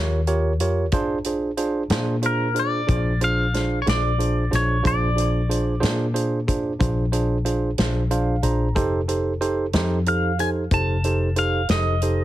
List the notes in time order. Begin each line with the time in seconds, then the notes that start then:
Already playing: D#2 F4 G4 A#4 C#5
0.27 F4 G4 A#4 C#5, closed hi-hat
0.60 F2 F4 G4 A#4 C#5, closed hi-hat
0.92 A#1 D4 F4 G#4 C5, kick, closed hi-hat
1.24 D4 F4 G#4 C5, closed hi-hat
1.57 D4 F4 G#4 C5, closed hi-hat
1.90 A#2 D4 F4 G#4 C5, snare, closed hi-hat
2.22 D4 F4 G#4 C5, closed hi-hat
2.26 A#4
2.54 D4 F4 G#4 C5, closed hi-hat
2.59 D5
2.87 A#1 D4 F4 G#4 C5, kick, closed hi-hat
3.21 D4 F4 G#4 C5 F5, closed hi-hat
3.54 D4 F4 G#4 C5, snare, closed hi-hat
3.82 C#5
3.86 A#1 D4 F4 G#4 C5 D5, snare, closed hi-hat
4.18 D4 F4 G#4 C5, closed hi-hat
4.51 A#1 D4 F4 G#4 C5, snare, closed hi-hat
4.55 C#5
4.83 A#1 D4 F4 G#4 C5, kick, closed hi-hat
4.87 D5
5.16 D4 F4 G#4 C5, closed hi-hat
5.49 D4 F4 G#4 C5, closed hi-hat
5.80 A#2 D4 F4 G#4 C5, snare, closed hi-hat
6.14 D4 F4 G#4 C5, closed hi-hat
6.48 D4 F4 G#4 C5, kick, closed hi-hat
6.79 A#1 D4 F4 G#4 C5, kick, closed hi-hat
7.12 D4 F4 G#4 C5, closed hi-hat
7.45 D4 F4 G#4 C5, closed hi-hat
7.78 A#1 D4 F4 G#4 C5, snare, closed hi-hat
8.11 D4 F4 G#4 C5 F5, closed hi-hat
8.43 A#1 D4 F4 G#4 C5 A#5, closed hi-hat
8.75 F1 D#4 G4 A4 C5, kick, closed hi-hat
9.08 D#4 G4 A4 C5, closed hi-hat
9.41 D#4 G4 A4 C5, closed hi-hat
9.73 F2 D#4 G4 A4 C5, snare, closed hi-hat
10.06 D#4 G4 A4 C5 F5, closed hi-hat
10.39 D#4 G4 A4 C5 G#5, closed hi-hat
10.71 F1 D#4 G4 A4 C5 A5, kick, closed hi-hat
11.04 D#4 G4 A4 C5, closed hi-hat
11.36 D#4 G4 A4 C5 F5, closed hi-hat
11.69 F1 D#4 G4 A4 C5 D#5, snare, closed hi-hat
12.02 D#4 G4 A4 C5, closed hi-hat